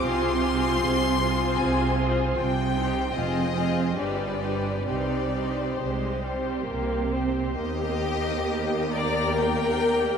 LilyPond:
<<
  \new Staff \with { instrumentName = "Violin section" } { \time 3/4 \key c \minor \tempo 4 = 69 c'''2 aes''8 r8 | g''4 ees''4 d''4 | d''4 c''4 r4 | \key ees \major ees''4. bes''8 g''4 | }
  \new Staff \with { instrumentName = "Violin section" } { \time 3/4 \key c \minor <aes' c''>8 <aes' c''>4 <aes' c''>4 <aes' c''>8 | r8 <g' c''>8 <aes' c''>8 <aes' c''>8 <g' b'>8 <g' b'>8 | <g' c''>8 <g' c''>4 <g' c''>4 <g' c''>8 | \key ees \major g'4. d''8 bes'4 | }
  \new Staff \with { instrumentName = "Viola section" } { \time 3/4 \key c \minor <c' f'>8 <c' f'>4 <c' f'>4 <c' f'>8 | r8 <c' ees'>8 <c' f'>8 <c' f'>8 <g d'>8 <g d'>8 | <g ees'>8 <g ees'>8 aes8 g8 bes8 c'8 | \key ees \major <bes g'>2. | }
  \new Staff \with { instrumentName = "Cello section" } { \clef bass \time 3/4 \key c \minor c4 c4 c4 | c4 f,4 g,4 | c4 c4 c4 | \key ees \major ees,2. | }
  \new Staff \with { instrumentName = "Double bass section" } { \clef bass \time 3/4 \key c \minor c,4 c,4 c,4 | c,4 f,,4 g,,4 | c,4 c,4 c,4 | \key ees \major ees,2. | }
>>